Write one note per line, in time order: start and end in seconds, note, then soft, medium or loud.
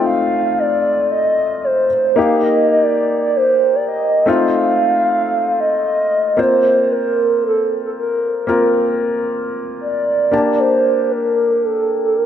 0.00 1.86 A3 medium
0.00 1.87 C4 medium
0.00 1.87 D#4 medium
0.00 1.87 F4 medium
0.06 0.60 F5 loud
0.59 1.11 D5 loud
1.11 1.66 D#5 loud
1.64 2.17 C5 loud
2.16 4.23 A#3 medium
2.16 4.24 D#4 medium
2.16 4.24 G4 medium
2.16 2.42 F5 loud
2.43 2.67 D#5 medium
2.69 2.84 D#5 medium
2.83 3.22 D5 loud
3.22 3.38 D5 loud
3.36 3.77 C5 loud
3.75 3.88 D5 medium
3.88 4.30 D#5 medium
4.26 6.33 A3 medium
4.26 6.34 C4 medium
4.26 6.34 D#4 medium
4.26 6.34 F4 medium
4.26 5.60 F5 loud
5.60 6.41 D#5 loud
6.37 8.44 A#3 medium
6.37 8.44 C4 medium
6.37 8.45 F4 medium
6.37 8.45 C5 medium
6.37 6.93 C5 loud
6.92 7.43 A#4 medium
7.44 7.80 A4 medium
7.85 7.90 A4 medium
7.97 8.46 A#4 medium
8.47 10.28 A#3 medium
8.47 10.29 C4 medium
8.47 10.29 F4 medium
8.47 10.29 A#4 medium
8.47 8.98 A#4 medium
9.81 10.60 D5 loud
10.31 12.26 A#3 medium
10.31 12.26 D4 medium
10.31 12.26 G4 medium
10.31 12.26 A5 medium
10.59 11.13 C5 loud
11.11 11.66 A#4 loud
11.64 12.04 A4 loud
12.05 12.18 A4 medium
12.17 12.26 A#4 medium